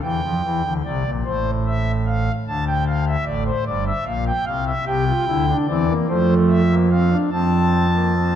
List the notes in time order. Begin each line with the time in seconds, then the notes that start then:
0.02 E2 E3 G5
0.23 F2 F3
0.44 E2 E3
0.64 D2 D3
0.85 C2 C3 D5
1.06 A#1 A#2
1.25 A1 A2 C5
1.67 E5
2.07 F5
2.47 D2 D3 A5
2.67 G5
2.88 F5
3.08 E5
3.25 A1 A2 D5
3.46 C5
3.67 G1 G2 D5
3.87 E5
4.05 A#1 A#2 F5
4.27 G5
4.46 C2 C3 F5
4.67 E5
4.86 C2 C3 G4 G5
5.07 F4
5.27 D2 D3 E4
5.49 D4
5.67 E2 E3 C4 D5
5.88 A#3
6.07 F2 F3 A3 C5
6.49 E5
6.71 A#3
6.91 C4 F5
7.11 D4
7.31 F2 F3 C4 A5
7.95 A#3
8.15 C4